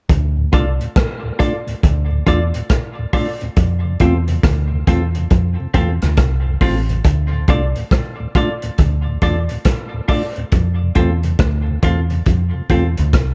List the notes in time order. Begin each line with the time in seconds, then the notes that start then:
0.09 D2, kick, closed hi-hat
0.37 D2 A2
0.52 C2 A3 D4 F4 A4 D5, kick, closed hi-hat
0.79 D2 A2, closed hi-hat
0.96 kick, cross-stick, closed hi-hat
1.23 D2 A2
1.39 A3 D4 F4 A4 D5, kick, closed hi-hat
1.67 D2 A2, closed hi-hat
1.83 D2, kick, closed hi-hat
2.11 D2 A2
2.27 E2 A3 D4 F4 A4 D5, kick, closed hi-hat
2.54 D2 A2, closed hi-hat
2.70 kick, cross-stick, closed hi-hat
2.99 D2 A2
3.13 A3 D4 F4 A4 D5, kick, open hi-hat
3.41 D2 A2, closed hi-hat
3.56 F2, kick, closed hi-hat
3.85 F2 C3
4.00 E2 A3 C4 F4 A4, kick, closed hi-hat
4.28 F2 C3, closed hi-hat
4.43 D2, kick, cross-stick, closed hi-hat
4.72 F2 C3
4.87 E2 A3 C4 F4 A4, kick, closed hi-hat
5.15 F2 C3, closed hi-hat
5.30 F2, kick, closed hi-hat
5.60 F2 C3
5.74 E2 A3 C4 F4 A4, kick, closed hi-hat
6.02 D2 F2 C3, cross-stick, closed hi-hat
6.17 C2, kick, cross-stick, closed hi-hat
6.47 F2 C3
6.61 A1 A3 C4 F4 A4, kick, open hi-hat
6.89 F2 C3, closed hi-hat
7.04 D2, kick, closed hi-hat
7.33 D2 A2
7.48 C2 A3 D4 F4 A4 D5, kick, closed hi-hat
7.76 D2 A2, closed hi-hat
7.91 kick, cross-stick, closed hi-hat
8.20 D2 A2
8.35 A3 D4 F4 A4 D5, kick, closed hi-hat
8.62 D2 A2, closed hi-hat
8.78 D2, kick, closed hi-hat
9.07 D2 A2
9.22 E2 A3 D4 F4 A4 D5, kick, closed hi-hat
9.49 D2 A2, closed hi-hat
9.65 kick, cross-stick, closed hi-hat
9.94 D2 A2
10.08 A3 D4 F4 A4 D5, kick, open hi-hat
10.36 D2 A2, closed hi-hat
10.52 F2, kick, closed hi-hat
10.82 F2 C3
10.95 E2 A3 C4 F4 A4, kick, closed hi-hat
11.23 F2 C3, closed hi-hat
11.39 D2, kick, cross-stick, closed hi-hat
11.67 F2 C3
11.83 E2 A3 C4 F4 A4, kick, closed hi-hat
12.10 F2 C3, closed hi-hat
12.26 F2, kick, closed hi-hat
12.54 F2 C3
12.70 E2 A3 C4 F4 A4, kick, closed hi-hat
12.97 D2 F2 C3, closed hi-hat
13.13 C2, kick, cross-stick, closed hi-hat